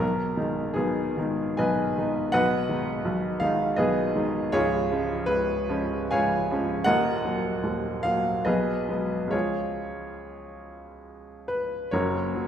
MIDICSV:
0, 0, Header, 1, 2, 480
1, 0, Start_track
1, 0, Tempo, 751880
1, 12, Time_signature, 3, 2, 24, 8
1, 492, Tempo, 828729
1, 972, Tempo, 754717
1, 1452, Tempo, 719424
1, 2412, Tempo, 745342
1, 3372, Tempo, 832178
1, 3852, Tempo, 767263
1, 4812, Tempo, 851064
1, 7534, End_track
2, 0, Start_track
2, 0, Title_t, "Upright piano"
2, 0, Program_c, 0, 0
2, 0, Control_c, 0, 64, 127
2, 0, Note_on_c, 0, 35, 55
2, 0, Note_on_c, 0, 47, 56
2, 0, Note_on_c, 0, 70, 84
2, 24, Control_c, 0, 64, 0
2, 108, Control_c, 0, 64, 127
2, 233, Note_off_c, 0, 35, 0
2, 235, Note_off_c, 0, 47, 0
2, 238, Note_on_c, 0, 51, 45
2, 245, Note_on_c, 0, 63, 44
2, 246, Note_on_c, 0, 56, 46
2, 462, Note_off_c, 0, 51, 0
2, 466, Note_off_c, 0, 56, 0
2, 466, Note_off_c, 0, 63, 0
2, 470, Note_on_c, 0, 68, 71
2, 479, Note_off_c, 0, 70, 0
2, 482, Note_on_c, 0, 59, 51
2, 483, Note_on_c, 0, 63, 55
2, 484, Note_on_c, 0, 35, 47
2, 485, Note_on_c, 0, 47, 55
2, 719, Note_off_c, 0, 35, 0
2, 720, Note_off_c, 0, 47, 0
2, 724, Note_off_c, 0, 63, 0
2, 726, Note_on_c, 0, 51, 52
2, 731, Note_on_c, 0, 56, 46
2, 732, Note_on_c, 0, 63, 55
2, 944, Note_off_c, 0, 59, 0
2, 947, Note_off_c, 0, 51, 0
2, 949, Note_off_c, 0, 56, 0
2, 950, Note_off_c, 0, 63, 0
2, 956, Note_on_c, 0, 80, 82
2, 962, Note_off_c, 0, 68, 0
2, 963, Note_on_c, 0, 71, 74
2, 965, Note_on_c, 0, 35, 51
2, 965, Note_on_c, 0, 75, 69
2, 969, Note_on_c, 0, 47, 50
2, 1206, Note_off_c, 0, 35, 0
2, 1208, Note_off_c, 0, 47, 0
2, 1213, Note_on_c, 0, 51, 46
2, 1215, Note_on_c, 0, 56, 46
2, 1219, Note_on_c, 0, 63, 50
2, 1422, Note_off_c, 0, 71, 0
2, 1423, Note_off_c, 0, 75, 0
2, 1426, Note_off_c, 0, 51, 0
2, 1427, Note_off_c, 0, 56, 0
2, 1429, Note_off_c, 0, 63, 0
2, 1431, Note_on_c, 0, 78, 106
2, 1439, Note_on_c, 0, 71, 83
2, 1440, Note_on_c, 0, 47, 58
2, 1440, Note_on_c, 0, 75, 83
2, 1441, Note_on_c, 0, 35, 61
2, 1444, Note_off_c, 0, 80, 0
2, 1464, Control_c, 0, 64, 0
2, 1579, Control_c, 0, 64, 127
2, 1678, Note_on_c, 0, 51, 43
2, 1678, Note_on_c, 0, 56, 45
2, 1681, Note_off_c, 0, 47, 0
2, 1682, Note_off_c, 0, 35, 0
2, 1685, Note_on_c, 0, 63, 50
2, 1900, Note_off_c, 0, 51, 0
2, 1900, Note_off_c, 0, 56, 0
2, 1904, Note_off_c, 0, 63, 0
2, 1915, Note_on_c, 0, 35, 53
2, 1916, Note_on_c, 0, 47, 55
2, 2137, Note_off_c, 0, 71, 0
2, 2138, Note_off_c, 0, 75, 0
2, 2148, Note_on_c, 0, 77, 96
2, 2154, Note_off_c, 0, 35, 0
2, 2155, Note_off_c, 0, 47, 0
2, 2157, Note_on_c, 0, 51, 51
2, 2159, Note_off_c, 0, 78, 0
2, 2166, Note_on_c, 0, 56, 54
2, 2169, Note_on_c, 0, 63, 61
2, 2381, Note_off_c, 0, 51, 0
2, 2386, Note_off_c, 0, 56, 0
2, 2388, Note_off_c, 0, 63, 0
2, 2393, Note_on_c, 0, 75, 84
2, 2401, Note_off_c, 0, 77, 0
2, 2401, Note_on_c, 0, 71, 65
2, 2402, Note_on_c, 0, 68, 77
2, 2403, Note_on_c, 0, 47, 59
2, 2406, Note_on_c, 0, 35, 55
2, 2638, Note_off_c, 0, 47, 0
2, 2640, Note_off_c, 0, 35, 0
2, 2646, Note_on_c, 0, 51, 50
2, 2647, Note_on_c, 0, 56, 45
2, 2651, Note_on_c, 0, 63, 56
2, 2858, Note_off_c, 0, 71, 0
2, 2859, Note_off_c, 0, 68, 0
2, 2863, Note_off_c, 0, 51, 0
2, 2864, Note_off_c, 0, 56, 0
2, 2866, Note_off_c, 0, 63, 0
2, 2880, Note_off_c, 0, 75, 0
2, 2882, Note_on_c, 0, 73, 102
2, 2885, Note_on_c, 0, 65, 78
2, 2887, Note_on_c, 0, 68, 80
2, 2889, Note_on_c, 0, 37, 70
2, 2893, Note_on_c, 0, 25, 60
2, 2900, Control_c, 0, 64, 0
2, 3019, Control_c, 0, 64, 127
2, 3123, Note_off_c, 0, 37, 0
2, 3124, Note_off_c, 0, 25, 0
2, 3130, Note_on_c, 0, 53, 47
2, 3135, Note_on_c, 0, 56, 45
2, 3139, Note_on_c, 0, 61, 52
2, 3345, Note_off_c, 0, 65, 0
2, 3346, Note_off_c, 0, 68, 0
2, 3349, Note_off_c, 0, 53, 0
2, 3351, Note_off_c, 0, 56, 0
2, 3353, Note_off_c, 0, 61, 0
2, 3358, Note_on_c, 0, 71, 97
2, 3368, Note_on_c, 0, 37, 50
2, 3369, Note_off_c, 0, 73, 0
2, 3371, Note_on_c, 0, 25, 49
2, 3599, Note_off_c, 0, 37, 0
2, 3601, Note_off_c, 0, 25, 0
2, 3609, Note_on_c, 0, 53, 58
2, 3610, Note_on_c, 0, 56, 55
2, 3614, Note_on_c, 0, 61, 57
2, 3829, Note_off_c, 0, 53, 0
2, 3830, Note_off_c, 0, 56, 0
2, 3832, Note_off_c, 0, 61, 0
2, 3846, Note_off_c, 0, 71, 0
2, 3847, Note_on_c, 0, 80, 93
2, 3851, Note_on_c, 0, 77, 84
2, 3855, Note_on_c, 0, 73, 82
2, 3857, Note_on_c, 0, 25, 55
2, 3862, Note_on_c, 0, 37, 55
2, 4092, Note_off_c, 0, 25, 0
2, 4095, Note_off_c, 0, 37, 0
2, 4099, Note_on_c, 0, 53, 53
2, 4104, Note_on_c, 0, 56, 52
2, 4105, Note_on_c, 0, 61, 61
2, 4305, Note_off_c, 0, 77, 0
2, 4307, Note_off_c, 0, 73, 0
2, 4308, Note_off_c, 0, 53, 0
2, 4308, Note_on_c, 0, 78, 116
2, 4311, Note_off_c, 0, 56, 0
2, 4312, Note_off_c, 0, 61, 0
2, 4316, Note_on_c, 0, 75, 82
2, 4318, Note_on_c, 0, 70, 75
2, 4322, Note_on_c, 0, 27, 57
2, 4323, Note_on_c, 0, 39, 68
2, 4327, Note_off_c, 0, 80, 0
2, 4340, Control_c, 0, 64, 0
2, 4455, Control_c, 0, 64, 127
2, 4555, Note_off_c, 0, 27, 0
2, 4555, Note_off_c, 0, 39, 0
2, 4559, Note_on_c, 0, 54, 48
2, 4560, Note_on_c, 0, 58, 52
2, 4783, Note_off_c, 0, 54, 0
2, 4784, Note_off_c, 0, 58, 0
2, 4799, Note_on_c, 0, 39, 49
2, 4805, Note_on_c, 0, 27, 53
2, 5014, Note_off_c, 0, 75, 0
2, 5015, Note_off_c, 0, 70, 0
2, 5025, Note_on_c, 0, 77, 104
2, 5030, Note_off_c, 0, 39, 0
2, 5033, Note_off_c, 0, 27, 0
2, 5033, Note_off_c, 0, 78, 0
2, 5036, Note_on_c, 0, 54, 50
2, 5039, Note_on_c, 0, 58, 51
2, 5254, Note_off_c, 0, 54, 0
2, 5255, Note_off_c, 0, 58, 0
2, 5261, Note_on_c, 0, 75, 83
2, 5264, Note_on_c, 0, 71, 66
2, 5265, Note_on_c, 0, 68, 70
2, 5269, Note_on_c, 0, 35, 56
2, 5270, Note_off_c, 0, 77, 0
2, 5270, Note_on_c, 0, 47, 57
2, 5290, Control_c, 0, 64, 0
2, 5391, Control_c, 0, 64, 127
2, 5505, Note_off_c, 0, 35, 0
2, 5505, Note_off_c, 0, 47, 0
2, 5510, Note_on_c, 0, 54, 39
2, 5512, Note_on_c, 0, 56, 41
2, 5516, Note_on_c, 0, 59, 45
2, 5728, Note_on_c, 0, 37, 46
2, 5729, Note_off_c, 0, 68, 0
2, 5729, Note_off_c, 0, 71, 0
2, 5733, Note_off_c, 0, 54, 0
2, 5733, Note_off_c, 0, 56, 0
2, 5736, Note_off_c, 0, 59, 0
2, 5736, Note_on_c, 0, 53, 41
2, 5742, Note_on_c, 0, 56, 40
2, 5746, Note_on_c, 0, 73, 76
2, 5750, Note_off_c, 0, 75, 0
2, 5753, Note_on_c, 0, 65, 56
2, 5756, Note_on_c, 0, 68, 56
2, 5771, Control_c, 0, 64, 0
2, 5864, Control_c, 0, 64, 127
2, 6957, Note_off_c, 0, 65, 0
2, 6958, Note_off_c, 0, 68, 0
2, 6972, Note_on_c, 0, 71, 73
2, 6976, Note_off_c, 0, 73, 0
2, 7184, Note_off_c, 0, 37, 0
2, 7188, Note_off_c, 0, 53, 0
2, 7196, Note_off_c, 0, 56, 0
2, 7216, Note_on_c, 0, 73, 83
2, 7217, Note_off_c, 0, 71, 0
2, 7224, Note_on_c, 0, 30, 66
2, 7225, Note_on_c, 0, 70, 66
2, 7226, Note_on_c, 0, 42, 58
2, 7226, Note_on_c, 0, 66, 54
2, 7233, Control_c, 0, 64, 0
2, 7345, Note_on_c, 0, 58, 51
2, 7347, Control_c, 0, 64, 127
2, 7461, Note_on_c, 0, 54, 49
2, 7528, Note_off_c, 0, 58, 0
2, 7534, Note_off_c, 0, 30, 0
2, 7534, Note_off_c, 0, 42, 0
2, 7534, Note_off_c, 0, 54, 0
2, 7534, Note_off_c, 0, 66, 0
2, 7534, Note_off_c, 0, 70, 0
2, 7534, Note_off_c, 0, 73, 0
2, 7534, End_track
0, 0, End_of_file